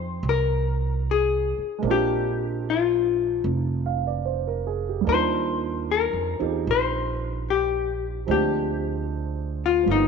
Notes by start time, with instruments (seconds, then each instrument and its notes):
Already playing: upright bass F2, grand piano F3 G#3 C4 D#4 G5, hollow-body jazz guitar C5
0.23 upright bass C2
0.29 hollow-body jazz guitar A#4
1.11 hollow-body jazz guitar G#4
1.58 muted upright bass stroke
1.78 grand piano G#3 A#3
1.83 upright bass A#1, grand piano C4
1.87 grand piano D4 F4
1.91 hollow-body jazz guitar G4
2.70 hollow-body jazz guitar F4
3.44 upright bass F1
3.58 hollow-body jazz guitar D#4
3.86 grand piano F5
4.07 grand piano D5
4.25 grand piano C5
4.47 grand piano A#4
4.67 grand piano G#4
4.89 grand piano G4
5.01 grand piano G3 A#3
5.07 upright bass D#2, grand piano D4 D#4, hollow-body jazz guitar C5
5.12 grand piano F4
5.91 hollow-body jazz guitar A#4
6.13 upright bass F2
6.39 upright bass E2, grand piano C4 D#4 F4 G4
6.50 hollow-body jazz guitar G#4
6.67 upright bass A#1, hollow-body jazz guitar C5
7.50 hollow-body jazz guitar G4
8.27 upright bass D2, grand piano F3 G#3 C4 D4
8.31 grand piano F4, hollow-body jazz guitar G4
9.66 hollow-body jazz guitar F4
9.83 grand piano F3 G3
9.87 upright bass G1, grand piano A#3
9.91 grand piano B3 D#4, hollow-body jazz guitar D#4